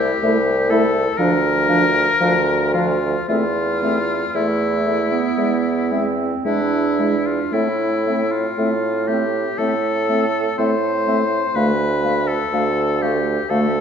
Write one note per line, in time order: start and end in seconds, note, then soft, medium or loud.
0.00 0.12 C2 medium
0.00 0.72 G4 medium
0.23 1.07 C2 medium
0.23 0.39 A3 medium
0.23 0.40 E4 medium
0.23 0.34 E5 medium
0.69 0.85 A3 medium
0.69 0.87 E4 medium
0.69 1.19 A4 medium
0.69 0.82 E5 medium
1.18 2.08 D2 medium
1.18 1.34 F3 medium
1.18 1.36 D4 medium
1.18 2.73 A#4 loud
1.18 1.30 F5 medium
1.68 1.84 F3 soft
1.68 1.85 D4 medium
1.68 1.80 F5 soft
2.20 3.16 D2 medium
2.20 2.36 F3 medium
2.20 2.37 D4 soft
2.20 2.33 F5 medium
2.73 2.89 F3 soft
2.73 2.91 D4 soft
2.73 3.28 F4 medium
2.73 2.86 F5 medium
3.28 4.23 E2 medium
3.28 3.44 A3 medium
3.28 3.45 C4 soft
3.28 4.37 F4 medium
3.28 3.41 E5 soft
3.82 3.98 A3 soft
3.82 3.99 C4 soft
3.82 3.95 E5 soft
4.35 5.25 E2 medium
4.35 4.51 A3 soft
4.35 5.08 A3 medium
4.35 6.16 E4 medium
4.35 4.47 E5 soft
4.85 5.01 A3 soft
4.85 4.99 E5 soft
5.12 5.93 B3 medium
5.37 6.33 E2 soft
5.37 5.53 G#3 soft
5.37 5.50 E5 soft
5.91 6.07 G#3 soft
5.91 6.45 C4 medium
5.91 6.04 E5 soft
6.45 7.41 E2 medium
6.45 6.61 G#3 soft
6.45 7.51 D4 medium
6.45 7.28 E4 medium
6.45 6.58 E5 soft
6.99 7.15 G#3 soft
6.99 7.11 E5 soft
7.26 7.55 F4 soft
7.52 8.46 A2 medium
7.52 7.68 A3 medium
7.52 7.69 C4 soft
7.52 8.33 E4 medium
7.52 7.66 E5 soft
8.06 8.22 A3 soft
8.06 8.23 C4 soft
8.06 8.19 E5 soft
8.31 9.09 F4 medium
8.58 9.46 A2 medium
8.58 8.74 A3 soft
8.58 8.74 C4 soft
8.58 8.70 E5 soft
9.07 9.24 A3 soft
9.07 9.26 C4 soft
9.07 9.59 G4 medium
9.07 9.20 E5 soft
9.58 10.47 A2 medium
9.58 9.75 A3 soft
9.58 9.75 C4 soft
9.58 10.57 A4 medium
9.58 9.71 E5 soft
10.09 10.25 A3 soft
10.09 10.25 C4 soft
10.09 10.20 E5 soft
10.58 11.44 A2 medium
10.58 10.74 A3 soft
10.58 10.74 C4 soft
10.58 11.56 C5 medium
10.58 10.70 E5 soft
11.06 11.23 A3 soft
11.06 11.22 C4 soft
11.06 11.19 E5 soft
11.55 12.41 D2 medium
11.55 11.72 A3 medium
11.55 11.73 A3 soft
11.55 12.29 B4 medium
11.55 11.67 F5 soft
12.04 12.21 A3 soft
12.04 12.15 F5 soft
12.28 13.03 A4 medium
12.53 13.38 D2 medium
12.53 12.69 A3 soft
12.53 12.70 A3 soft
12.53 12.64 F5 medium
13.02 13.18 A3 soft
13.02 13.19 A3 soft
13.02 13.51 G4 medium
13.02 13.13 F5 soft
13.49 13.81 D2 medium
13.49 13.67 A3 soft
13.49 13.67 A3 medium
13.49 13.81 A4 medium
13.49 13.61 F5 medium